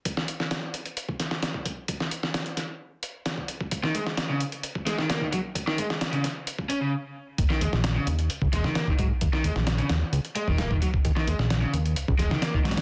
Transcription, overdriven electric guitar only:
X:1
M:4/4
L:1/16
Q:1/4=131
K:Ebm
V:1 name="Overdriven electric guitar" clef=bass
z16 | z16 | z E, A, z2 D, z4 A, E, B, E, G, z | z E, A, z2 D, z4 D D, z4 |
z E, A, z2 D, z4 A, E, B, E, G, z | z E, A, z2 D, z4 A, E, B, E, G, z | z E, A, z2 D, z4 A, E, B, E, G, z |]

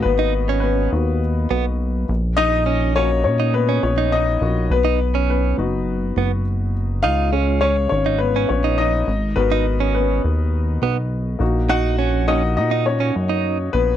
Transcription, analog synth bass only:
X:1
M:4/4
L:1/8
Q:1/4=103
K:D#m
V:1 name="Analog synth bass" clef=bass
G,,,3 D,,2 B,,,2 A,,,- | A,,,3 A,,2 A,,,2 A,,, | B,,,3 F,,,2 F,,,3 | C,,3 G,,,2 A,,,2 G,,, |
G,,,3 D,,2 B,,,2 A,,,- | A,,,3 A,,2 F,,2 A,,, |]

